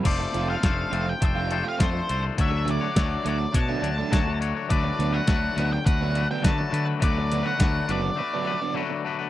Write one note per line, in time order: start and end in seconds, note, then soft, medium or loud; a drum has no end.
0.03 0.25 F1 medium
0.03 0.62 F3 medium
0.03 0.63 A3 medium
0.03 0.50 D4 medium
0.03 0.49 A4 medium
0.03 0.47 C5 medium
0.03 0.50 D5 medium
0.03 kick medium
0.03 closed hi-hat medium
0.03 crash medium
0.20 muted overdriven electric guitar stroke soft
0.34 0.54 F1 medium
0.34 0.53 F3 medium
0.34 0.54 A3 medium
0.34 0.54 C4 medium
0.34 0.54 F4 medium
0.34 closed hi-hat medium
0.48 0.64 D4 medium
0.48 0.64 A4 medium
0.48 0.64 C5 medium
0.48 1.10 F5 medium
0.63 0.83 F1 medium
0.63 1.22 F3 medium
0.63 0.91 A3 medium
0.63 0.93 D4 medium
0.63 0.93 A4 medium
0.63 0.93 C5 loud
0.63 muted overdriven electric guitar stroke soft
0.63 kick loud
0.63 snare loud
0.63 closed hi-hat medium
0.92 1.12 F1 medium
0.92 1.11 F3 medium
0.92 1.07 A3 medium
0.92 1.12 A3 medium
0.92 1.12 C4 medium
0.92 1.08 D4 medium
0.92 1.12 F4 medium
0.92 1.07 A4 medium
0.92 1.06 C5 medium
0.92 closed hi-hat medium
1.08 1.23 G5 medium
1.08 muted clean electric guitar stroke soft
1.20 1.61 F1 medium
1.20 1.50 A3 medium
1.20 1.51 D4 medium
1.20 1.51 A4 medium
1.20 1.52 C5 medium
1.20 muted overdriven electric guitar stroke soft
1.20 kick loud
1.20 closed hi-hat medium
1.25 1.64 G5 medium
1.35 1.55 F3 medium
1.35 1.55 A3 medium
1.35 1.55 C4 medium
1.35 1.55 F4 medium
1.51 1.66 A3 medium
1.51 1.66 D4 medium
1.51 1.65 A4 medium
1.51 1.64 C5 medium
1.51 closed hi-hat medium
1.64 1.84 F3 medium
1.64 1.84 A3 medium
1.64 1.84 C4 medium
1.64 1.84 F4 medium
1.64 muted clean electric guitar stroke soft
1.69 1.82 F5 medium
1.78 2.00 F2 medium
1.78 2.36 F3 medium
1.78 2.09 A3 medium
1.78 2.09 D4 medium
1.78 2.10 A4 medium
1.78 2.10 C5 loud
1.78 kick loud
1.78 snare loud
1.78 closed hi-hat medium
1.82 2.22 C5 medium
1.93 muted overdriven electric guitar stroke medium
2.09 2.29 C2 medium
2.09 2.37 A3 medium
2.09 2.25 D4 medium
2.09 2.24 A4 medium
2.09 2.21 C5 medium
2.09 closed hi-hat medium
2.23 2.38 D4 medium
2.23 2.38 A4 medium
2.23 2.36 C5 medium
2.37 2.77 D2 medium
2.37 2.95 D3 medium
2.37 2.96 F#3 medium
2.37 2.83 A3 medium
2.37 2.82 D4 medium
2.37 2.81 F#4 loud
2.37 2.80 C#5 medium
2.37 kick medium
2.37 closed hi-hat medium
2.41 2.70 E5 medium
2.51 muted overdriven electric guitar stroke soft
2.65 2.85 D3 medium
2.65 2.86 F#3 medium
2.65 2.86 A3 medium
2.65 2.86 D4 medium
2.65 closed hi-hat medium
2.71 3.28 D5 medium
2.81 2.96 A3 medium
2.81 2.97 D4 medium
2.81 2.97 F#4 medium
2.81 2.97 C#5 medium
2.96 3.16 D2 medium
2.96 3.58 D3 medium
2.96 4.11 F#3 medium
2.96 3.25 A3 medium
2.96 3.25 D4 loud
2.96 3.27 F#4 loud
2.96 3.27 C#5 medium
2.96 muted overdriven electric guitar stroke soft
2.96 kick loud
2.96 snare loud
2.96 closed hi-hat medium
3.25 3.45 D2 medium
3.25 3.44 D3 medium
3.25 3.44 F#3 medium
3.25 3.40 A3 medium
3.25 3.45 A3 medium
3.25 3.39 D4 medium
3.25 3.45 D4 medium
3.25 3.39 F#4 medium
3.25 3.38 C#5 medium
3.25 closed hi-hat medium
3.29 3.57 D5 medium
3.39 muted clean electric guitar stroke soft
3.52 3.74 B2 medium
3.52 3.81 A3 medium
3.52 3.82 D4 medium
3.52 3.83 F#4 medium
3.52 3.82 C#5 medium
3.52 4.38 A5 medium
3.52 muted overdriven electric guitar stroke soft
3.52 kick loud
3.52 closed hi-hat loud
3.69 3.89 D3 medium
3.69 3.88 F#3 medium
3.69 3.88 A3 medium
3.69 3.88 D4 loud
3.81 4.02 D2 medium
3.81 3.98 A3 medium
3.81 3.98 D4 medium
3.81 3.98 F#4 medium
3.81 3.97 C#5 medium
3.81 closed hi-hat medium
3.98 4.18 D3 medium
3.98 4.18 F#3 medium
3.98 4.18 A3 medium
3.98 4.18 D4 medium
3.98 muted clean electric guitar stroke medium
4.11 4.52 D2 medium
4.11 4.68 D3 medium
4.11 4.69 F#3 medium
4.11 4.39 A3 loud
4.11 4.40 D4 medium
4.11 4.41 F#4 medium
4.11 4.41 C#5 medium
4.11 kick loud
4.11 snare loud
4.11 closed hi-hat loud
4.26 muted overdriven electric guitar stroke medium
4.40 4.57 A3 medium
4.40 4.56 D4 medium
4.40 4.56 F#4 medium
4.40 4.54 C#5 medium
4.40 closed hi-hat medium
4.55 4.69 A3 medium
4.55 4.70 D4 medium
4.55 4.71 F#4 medium
4.55 4.68 C#5 medium
4.69 4.90 D2 medium
4.69 5.26 D3 medium
4.69 5.27 F#3 medium
4.69 5.14 A3 medium
4.69 5.13 D4 loud
4.69 5.13 F#4 loud
4.69 5.12 B4 loud
4.69 5.15 D5 medium
4.69 kick medium
4.69 closed hi-hat medium
4.84 muted overdriven electric guitar stroke soft
4.99 5.19 D2 loud
4.99 5.18 D3 medium
4.99 5.19 F#3 medium
4.99 5.19 B3 medium
4.99 5.19 D4 loud
4.99 closed hi-hat medium
5.12 5.27 A3 medium
5.12 5.28 D4 medium
5.12 5.28 F#4 medium
5.12 5.28 B4 medium
5.12 5.72 F#5 medium
5.26 5.48 D2 loud
5.26 6.41 D3 loud
5.26 6.41 F#3 medium
5.26 5.54 A3 loud
5.26 5.56 D4 loud
5.26 5.56 F#4 loud
5.26 5.57 B4 loud
5.26 muted overdriven electric guitar stroke soft
5.26 kick loud
5.26 snare loud
5.26 closed hi-hat medium
5.55 5.77 D2 medium
5.55 5.77 D3 medium
5.55 5.77 F#3 medium
5.55 5.71 A3 medium
5.55 5.71 D4 medium
5.55 5.70 F#4 medium
5.55 5.70 B4 medium
5.55 closed hi-hat medium
5.59 5.77 B3 medium
5.59 5.77 D4 medium
5.71 5.85 G5 medium
5.71 muted clean electric guitar stroke soft
5.85 6.25 D2 medium
5.85 6.14 A3 medium
5.85 6.15 D4 medium
5.85 6.15 F#4 medium
5.85 6.17 B4 medium
5.85 6.27 F#5 medium
5.85 muted overdriven electric guitar stroke soft
5.85 kick loud
5.85 closed hi-hat medium
6.01 6.21 D3 medium
6.01 6.20 F#3 medium
6.01 6.20 B3 medium
6.01 6.20 D4 loud
6.14 6.29 A3 medium
6.14 6.28 D4 medium
6.14 6.27 F#4 medium
6.14 6.28 B4 medium
6.14 closed hi-hat medium
6.28 6.50 D3 medium
6.28 6.49 F#3 medium
6.28 6.49 B3 medium
6.28 6.49 D4 medium
6.28 6.45 G5 loud
6.28 muted clean electric guitar stroke soft
6.42 6.98 D3 medium
6.42 6.64 D3 medium
6.42 6.99 F#3 medium
6.42 6.70 A3 medium
6.42 6.71 D4 loud
6.42 6.71 F#4 loud
6.42 6.73 B4 medium
6.42 kick loud
6.42 snare loud
6.42 closed hi-hat medium
6.46 6.86 A5 loud
6.60 muted overdriven electric guitar stroke medium
6.70 6.92 D3 medium
6.70 6.87 A3 medium
6.70 6.86 D4 medium
6.70 6.84 F#4 medium
6.70 6.84 B4 medium
6.70 closed hi-hat medium
6.85 6.99 A3 medium
6.85 7.00 D4 medium
6.85 7.01 F#4 medium
6.85 7.01 B4 medium
6.99 7.41 D2 medium
6.99 7.57 D3 loud
6.99 7.57 F#3 medium
6.99 7.44 A3 medium
6.99 7.44 D4 medium
6.99 7.43 F#4 loud
6.99 7.42 B4 loud
6.99 kick loud
6.99 closed hi-hat medium
7.04 7.44 D5 medium
7.18 muted overdriven electric guitar stroke soft
7.32 7.51 D3 medium
7.32 7.51 F#3 medium
7.32 7.51 B3 medium
7.32 7.51 D4 medium
7.32 closed hi-hat medium
7.43 7.58 A3 medium
7.43 7.58 D4 medium
7.43 7.59 F#4 medium
7.43 7.59 B4 medium
7.43 7.91 F#5 medium
7.43 snare soft
7.58 7.80 D2 medium
7.58 8.17 D3 loud
7.58 8.17 F#3 medium
7.58 7.86 A3 loud
7.58 7.87 D4 loud
7.58 7.87 F#4 loud
7.58 7.89 B4 loud
7.58 kick loud
7.58 snare loud
7.58 closed hi-hat loud
7.62 muted overdriven electric guitar stroke soft
7.88 8.09 F#1 loud
7.88 8.08 D3 medium
7.88 8.09 F#3 medium
7.88 8.02 A3 medium
7.88 8.09 B3 medium
7.88 8.01 D4 medium
7.88 8.09 D4 medium
7.88 8.01 F#4 medium
7.88 8.01 B4 medium
7.88 8.73 D5 medium
7.88 closed hi-hat medium
8.02 muted clean electric guitar stroke soft
8.16 8.44 A3 medium
8.16 8.45 D4 medium
8.16 8.46 F#4 medium
8.16 8.46 B4 medium
8.16 muted overdriven electric guitar stroke soft
8.34 8.53 D3 medium
8.34 8.53 F#3 medium
8.34 8.52 B3 medium
8.34 8.52 D4 loud
8.45 8.61 A3 medium
8.45 8.60 D4 medium
8.45 8.60 F#4 medium
8.45 8.60 B4 medium
8.61 8.81 D3 medium
8.61 8.81 F#3 medium
8.61 8.80 B3 medium
8.61 8.80 D4 medium
8.61 muted clean electric guitar stroke soft
8.74 9.30 D3 medium
8.74 9.30 F#3 loud
8.74 9.03 A3 loud
8.74 9.04 D4 loud
8.74 9.05 F#4 loud
8.74 9.06 B4 medium
8.90 muted overdriven electric guitar stroke medium
9.04 9.20 A3 medium
9.04 9.19 D4 medium
9.04 9.18 F#4 medium
9.04 9.17 B4 medium
9.19 9.30 A3 medium
9.19 9.30 D4 medium
9.19 9.30 F#4 medium
9.19 9.30 B4 medium